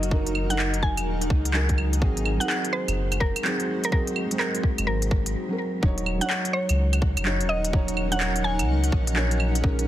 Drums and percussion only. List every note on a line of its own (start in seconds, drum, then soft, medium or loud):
0.03 closed hi-hat soft
0.11 kick loud
0.26 closed hi-hat soft
0.35 claves soft
0.50 closed hi-hat medium
0.59 clap loud
0.74 closed hi-hat soft
0.83 kick medium
0.97 closed hi-hat soft
0.97 claves soft
1.22 closed hi-hat soft
1.30 kick loud
1.45 closed hi-hat medium
1.54 clap medium
1.69 kick medium
1.69 closed hi-hat soft
1.78 claves soft
1.93 closed hi-hat soft
2.02 kick loud
2.17 closed hi-hat soft
2.25 claves medium
2.41 closed hi-hat medium
2.50 clap medium
2.65 closed hi-hat soft
2.88 closed hi-hat soft
2.88 claves medium
3.12 closed hi-hat soft
3.12 claves medium
3.21 kick medium
3.36 closed hi-hat medium
3.36 claves medium
3.45 clap medium
3.60 closed hi-hat soft
3.84 closed hi-hat medium
3.92 kick loud
4.07 closed hi-hat soft
4.16 claves medium
4.31 closed hi-hat medium
4.40 clap loud
4.55 closed hi-hat soft
4.64 kick medium
4.78 closed hi-hat medium
4.78 claves medium
5.02 closed hi-hat soft
5.11 kick loud
5.26 closed hi-hat medium
5.83 kick loud
5.98 closed hi-hat soft
6.06 claves medium
6.21 closed hi-hat medium
6.30 clap loud
6.45 closed hi-hat soft
6.69 closed hi-hat medium
6.69 claves medium
6.93 closed hi-hat soft
6.93 claves medium
7.02 kick loud
7.17 closed hi-hat medium
7.17 claves medium
7.25 clap loud
7.40 closed hi-hat soft
7.64 closed hi-hat medium
7.73 kick loud
7.88 closed hi-hat soft
7.97 claves medium
8.12 closed hi-hat medium
8.20 clap loud
8.36 closed hi-hat soft
8.59 closed hi-hat medium
8.59 claves medium
8.84 closed hi-hat soft
8.92 kick loud
9.07 closed hi-hat medium
9.16 clap loud
9.31 closed hi-hat soft
9.40 claves soft
9.55 closed hi-hat medium
9.64 kick loud
9.79 closed hi-hat soft